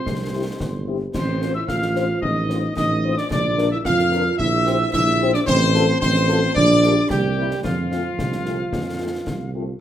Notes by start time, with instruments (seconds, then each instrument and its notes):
Already playing: euphonium C4, trumpet section C5, piccolo C6
0.06 tuba C2, concert bass drum, snare
0.33 french horn section C4 E4 G4
0.60 tuba G1, concert bass drum, snare
0.87 french horn section C4 E4 G4
1.14 tuba A1, euphonium C4, trumpet section C5, piccolo C6, concert bass drum, snare, crash
1.41 french horn section C4 F4 C5, snare
1.54 euphonium E4, trumpet section E5, piccolo E6
1.68 tuba A1, euphonium F4, trumpet section F5, piccolo F6, concert bass drum, snare
1.82 snare
1.95 french horn section C4 F4 C5, snare
2.22 tuba A1, euphonium D#4, trumpet section D#5, piccolo D#6, concert bass drum
2.49 french horn section C4 F4 C5, snare
2.76 tuba A1, euphonium D#4, trumpet section D#5, piccolo D#6, concert bass drum, snare
3.03 french horn section C4 F4 C5
3.18 euphonium D4, trumpet section D5, piccolo D6, snare
3.30 tuba A#1, euphonium D4, trumpet section D5, piccolo D6, concert bass drum, snare
3.57 french horn section D4 F4 A#4, snare
3.72 euphonium E4, trumpet section E5, piccolo E6
3.85 tuba F2, euphonium F4, trumpet section F5, piccolo F6, concert bass drum, snare
3.99 snare
4.12 french horn section D4 F4 A#4, snare
4.38 tuba A#1, euphonium E4, trumpet section E5, piccolo E6, concert bass drum
4.66 french horn section C4 G4 C5, snare
4.93 tuba A#1, euphonium E4, trumpet section E5, piccolo E6, concert bass drum, snare
5.20 french horn section C4 G4 C5
5.34 euphonium D4, trumpet section D5, piccolo D6, snare
5.46 tuba A1, euphonium C4, trumpet section C5, piccolo C6, concert bass drum, snare, crash
5.74 french horn section C4 F4 A4, snare
6.01 tuba A1, euphonium C4, trumpet section C5, piccolo C6, concert bass drum, snare
6.15 snare
6.28 french horn section C4 F4 A4, snare
6.55 tuba A#1, euphonium D4, trumpet section D5, piccolo D6, concert bass drum
6.83 french horn section A#3 D4 G4, snare
7.09 tuba C2, euphonium G3, trumpet section G4, piccolo G5, concert bass drum, snare
7.37 french horn section A#3 C4 E4
7.51 snare
7.64 tuba F2, euphonium F3, trumpet section F4, piccolo F5, concert bass drum, snare
7.91 french horn section A3 C4 F4, snare
8.19 tuba C2, concert bass drum, snare
8.32 snare
8.46 french horn section A3 C4 F4, snare
8.73 tuba F2, concert bass drum, snare
9.00 french horn section A3 C4 F4
9.27 tuba C2, concert bass drum, snare
9.54 french horn section A3 C4 F4